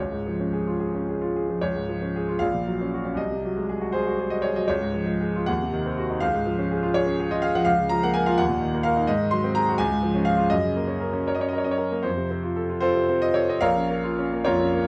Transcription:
grand piano
Already playing: C#2 C#5
0.12 G#2
0.27 F3
0.40 C#4
0.53 G#4
0.67 F4
0.80 G#4
0.95 C#4
1.09 G#4
1.21 F4
1.36 G#4
1.49 F3
1.61 C#2 C#5
1.76 G#2
1.89 F3
2.02 C#4
2.16 G#4
2.28 F4
2.39 A#1 F5
2.54 A#2
2.67 F#3
2.81 C#4
2.94 F#4
3.05 C#4
3.15 C2 D#5
3.31 C3
3.45 F#3
3.57 G#3
3.69 G#4
3.81 F#4
3.92 G#4 C5
4.07 F#4
4.19 G#4
4.30 F#4 D#5
4.42 G#4 C#5
4.56 F#3 D#5
4.68 C#2 C#5
4.81 G#2
4.94 F3
5.06 G#3
5.21 G#4
5.36 F4
5.46 D#2 F#5
5.62 C3
5.73 D#3
5.86 C4
5.98 F#4
6.10 D#4
6.20 C#2 F5
6.34 G#2
6.46 F3
6.58 C#4
6.71 G#4
6.83 F4
6.94 G#4 C#5
7.06 C#4
7.20 G#4
7.31 F4 D#5
7.42 G#4 F5
7.55 F3 F#5
7.65 C#2 F5
7.79 C#3
7.89 F3 A#5
8.03 A#3 F#5
8.14 A#4 G#5
8.26 F4 F5
8.38 D#2 F#5
8.49 A#2
8.61 D#3
8.74 A#3
8.83 A#4 F5
8.96 D#4
9.07 G#2 D#5
9.21 D#3
9.31 F#3 C6
9.44 C4
9.55 G#4 A#5
9.69 F#4
9.78 C#2 G#5
9.91 G#2
10.03 F3
10.15 C#4
10.25 G#4 F5
10.37 F4
10.50 F#2 D#5
10.64 C#3
10.76 A#3
10.88 C#4
11.00 A#4
11.13 C#4
11.27 A#4 C#5
11.35 D#5
11.39 C#4 C#5
11.49 D#5
11.53 A#4
11.58 C#5
11.64 C#4 D#5
11.71 C#5
11.78 A#4
11.92 A#3
12.03 F2 C5
12.17 C3
12.31 C4
12.43 F4
12.56 A4
12.69 F4
12.80 C4 F4 A4 C5
12.95 C3
13.09 C4
13.22 F4 D#5
13.34 A4 C#5
13.49 C4 D#5
13.61 A#1 A#4 C#5 F5
13.77 C#4
13.90 A#3
14.04 F4
14.19 C#4
14.32 A#3
14.45 F2 F4 A#4 C#5
14.60 C#4
14.73 A#3

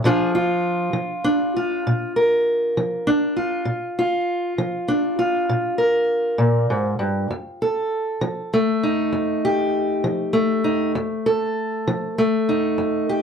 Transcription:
steel-string acoustic guitar
0.04 A#2 F3 D4 F4 G#4
0.35 F4
0.93 F3
1.24 D4
1.56 F4
1.87 A#2
2.16 A#4
2.77 F3
3.07 D4
3.37 F4
3.65 A#2
3.99 F4
4.58 F3
4.88 D4
5.19 F4
5.49 A#2
5.78 A#4
6.38 A#2
6.70 G#2
6.99 G2
7.31 F2
7.62 A4
8.21 F3
8.54 A3
8.83 D#4
9.13 F2
9.45 G4
10.04 F3
10.33 A3
10.64 D#4
10.95 F2
11.26 A4
11.87 F3
12.18 A3
12.49 D#4
12.78 F2
13.09 G4

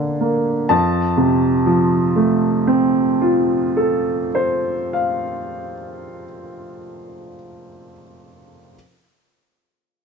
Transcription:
grand piano
Already playing: D3 A#3 D4
0.21 A#3
0.69 F2 A5
1.17 C3
1.66 F3
2.16 A3
2.67 C4
3.22 F4
3.77 A4
4.35 C5
4.93 F5

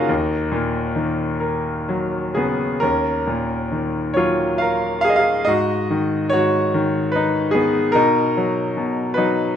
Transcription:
grand piano
Already playing: C#3 A#3 C#4 D#4 F4 F#4 G#4 A#4 D#5 F5 F#5 G#5
0.09 D#2
0.52 A#2
0.96 D#3
1.40 A#4
1.89 F#3
2.35 C#3 B3 G#4
2.80 D#2 C#4 A#4
3.27 A#2
3.72 D#3
4.14 F#3 F4 C#5
4.58 A#4 F5
5.01 G#4 F5
5.09 D#5
5.16 G#4 F5
5.45 G#2 F#4 D#5
5.90 D#3
6.30 G#2 F#4 C#5
6.74 D#3
7.12 D#4 B4
7.51 B3 G#4
7.92 B2 D#4 A#4
8.37 F#3
8.77 B2
9.14 F#3 D#4 B4

